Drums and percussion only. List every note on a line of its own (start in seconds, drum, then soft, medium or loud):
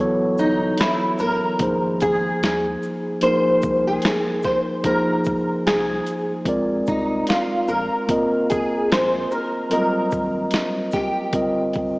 0.38 shaker soft
0.78 snare loud
0.78 closed hi-hat medium
1.18 shaker soft
1.59 kick loud
1.59 closed hi-hat medium
2.01 kick medium
2.01 closed hi-hat soft
2.01 shaker soft
2.43 snare loud
2.43 closed hi-hat medium
2.82 shaker soft
3.21 closed hi-hat medium
3.62 kick medium
3.62 shaker soft
4.02 snare loud
4.02 closed hi-hat medium
4.43 kick medium
4.43 snare soft
4.43 shaker soft
4.84 kick loud
4.84 closed hi-hat medium
5.25 kick medium
5.25 shaker soft
5.67 snare loud
5.67 closed hi-hat medium
6.07 closed hi-hat soft
6.07 shaker soft
6.45 kick medium
6.45 closed hi-hat medium
6.87 kick medium
6.87 shaker soft
7.27 snare loud
7.27 closed hi-hat medium
7.68 shaker soft
8.09 kick loud
8.09 closed hi-hat medium
8.50 kick medium
8.50 closed hi-hat soft
8.50 shaker soft
8.92 snare loud
8.92 closed hi-hat medium
9.31 shaker soft
9.71 closed hi-hat medium
10.11 kick medium
10.11 shaker soft
10.51 snare loud
10.51 closed hi-hat medium
10.92 kick medium
10.92 snare soft
10.92 shaker soft
11.33 kick loud
11.33 closed hi-hat medium
11.73 kick loud
11.73 closed hi-hat soft
11.73 shaker soft